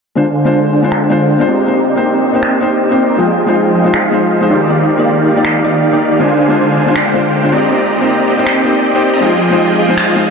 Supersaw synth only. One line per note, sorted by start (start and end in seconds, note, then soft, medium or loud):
0.16 0.71 D3 medium
0.16 0.71 D4 medium
0.16 0.71 C5 medium
0.16 0.71 F5 medium
0.16 0.71 G#5 medium
0.73 0.90 D3 medium
0.73 0.90 D4 medium
0.73 0.90 C5 medium
0.73 0.90 F5 medium
0.73 0.90 G#5 medium
0.92 1.46 D3 medium
0.92 1.46 D4 medium
0.92 1.46 F5 medium
0.92 1.46 G5 medium
1.48 2.22 C4 medium
1.48 2.22 G4 medium
1.48 2.22 D5 medium
1.48 2.22 D#5 medium
1.48 2.22 A#5 loud
2.24 2.88 C4 medium
2.24 2.88 G4 medium
2.24 2.88 D5 medium
2.24 2.88 D#5 medium
2.24 2.88 G5 medium
2.91 3.07 C4 medium
2.91 3.07 G4 medium
2.91 3.07 D5 medium
2.91 3.07 D#5 medium
2.91 3.07 G5 medium
3.10 3.16 C4 loud
3.10 3.16 G4 medium
3.10 3.16 D5 medium
3.10 3.16 D#5 medium
3.10 3.16 A#5 loud
3.18 3.73 F3 medium
3.18 3.73 F4 medium
3.18 3.73 G#4 medium
3.18 3.73 D#5 medium
3.18 3.73 G5 loud
3.75 3.92 F3 medium
3.75 3.92 F4 medium
3.75 3.92 G#4 medium
3.75 3.92 D#5 medium
3.75 3.92 G5 medium
3.94 4.48 F3 medium
3.94 4.48 F4 medium
3.94 4.48 G#4 medium
3.94 4.48 D#5 medium
3.94 4.48 F5 medium
4.50 5.24 D#3 medium
4.50 5.24 D#4 medium
4.50 5.24 G4 medium
4.50 5.24 D5 medium
4.50 5.24 F5 medium
5.26 5.90 D#3 medium
5.26 5.90 D#4 medium
5.26 5.90 G4 medium
5.26 5.90 D5 medium
5.26 5.90 F5 medium
5.93 6.09 D#3 medium
5.93 6.09 D#4 medium
5.93 6.09 G4 medium
5.93 6.09 D5 medium
5.93 6.09 F5 medium
6.11 6.18 D#3 medium
6.11 6.18 D#4 medium
6.11 6.18 G4 medium
6.11 6.18 D5 medium
6.11 6.18 F5 loud
6.20 6.75 D3 medium
6.20 6.75 D4 medium
6.20 6.75 C5 medium
6.20 6.75 F5 medium
6.20 6.75 G#5 medium
6.77 6.94 D3 medium
6.77 6.94 D4 medium
6.77 6.94 C5 medium
6.77 6.94 F5 medium
6.77 6.94 G#5 medium
6.96 7.50 D3 medium
6.96 7.50 D4 medium
6.96 7.50 C5 medium
6.96 7.50 F5 medium
6.96 7.50 G5 medium
7.52 8.26 C4 medium
7.52 8.26 G4 medium
7.52 8.26 D5 medium
7.52 8.26 D#5 medium
7.52 8.26 A#5 medium
8.28 8.92 C4 medium
8.28 8.92 G4 medium
8.28 8.92 D5 medium
8.28 8.92 D#5 medium
8.28 8.92 G5 medium
8.95 9.11 C4 medium
8.95 9.11 G4 medium
8.95 9.11 D5 medium
8.95 9.11 D#5 medium
8.95 9.11 G5 medium
9.13 9.20 C4 loud
9.13 9.20 G4 medium
9.13 9.20 D5 medium
9.13 9.20 D#5 medium
9.13 9.20 A#5 loud
9.22 9.77 F3 medium
9.22 9.77 F4 medium
9.22 9.76 G#4 medium
9.22 9.77 D#5 medium
9.22 9.77 G5 loud
9.79 9.96 F3 medium
9.79 9.95 F4 medium
9.79 9.95 G#4 medium
9.79 9.96 D#5 medium
9.79 9.95 G5 medium
9.98 10.30 F3 medium
9.98 10.30 F4 medium
9.98 10.30 G#4 medium
9.98 10.30 D#5 medium
9.98 10.30 F5 medium